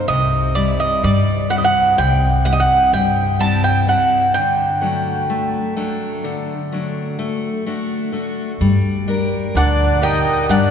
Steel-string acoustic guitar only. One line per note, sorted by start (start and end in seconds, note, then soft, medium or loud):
0.08 1.01 C3 medium
0.55 1.02 G3 soft
0.55 1.32 C4 soft
0.55 1.32 E4 soft
1.03 1.48 G3 medium
1.50 2.26 G3 soft
1.50 2.26 C4 soft
1.50 2.26 E4 medium
1.98 2.90 C3 medium
2.45 2.92 G3 soft
2.45 3.21 C4 soft
2.45 3.21 E4 soft
2.93 3.38 G3 medium
3.39 3.86 G3 soft
3.39 3.86 C4 soft
3.39 3.87 E4 medium
3.87 4.25 G3 soft
3.87 4.25 C4 soft
3.87 4.26 E4 soft
4.35 5.27 D3 medium
4.81 5.58 F#3 soft
4.81 5.28 A3 soft
4.81 5.58 D4 soft
5.30 5.75 A3 medium
5.76 6.53 F#3 medium
5.76 6.52 A3 soft
5.76 6.53 D4 soft
6.24 7.16 D3 medium
6.72 7.48 F#3 soft
6.72 7.18 A3 soft
6.72 7.48 D4 soft
7.19 7.65 A3 medium
7.66 8.11 A3 soft
7.66 8.12 D4 soft
7.66 8.13 F#4 medium
8.12 8.51 A3 soft
8.12 8.51 D4 soft
8.12 8.52 F#4 soft
8.61 9.53 G3 medium
9.08 9.84 D4 soft
9.08 9.84 G4 soft
9.08 9.84 A#4 medium
9.55 10.47 A#2 medium
10.01 10.71 G4 soft
10.01 10.71 A#4 soft
10.01 10.71 D5 medium
10.49 10.71 G3 medium